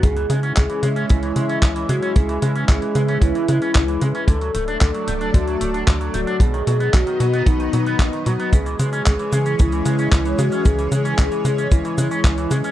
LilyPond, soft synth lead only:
\new Staff \with { instrumentName = "Soft synth lead" } { \time 4/4 \key cis \minor \tempo 4 = 113 gis'4 gis'4 e'4. fis'8 | gis'4 gis'4 e'4. gis'8 | a'4 a'4 fis'4. fis'8 | gis'4 fis'4 dis'4. fis'8 |
gis'4 gis'4 e'4. fis'8 | gis'4 gis'4 e'4. gis'8 | }